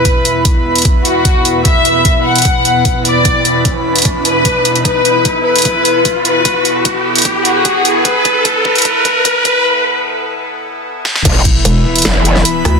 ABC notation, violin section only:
X:1
M:4/4
L:1/8
Q:1/4=150
K:Clyd
V:1 name="Violin section"
B2 z3 F3 | e3 f4 d- | d2 z3 B3 | B3 B4 B- |
B2 z3 F3 | B3 B4 B | z8 | z8 |]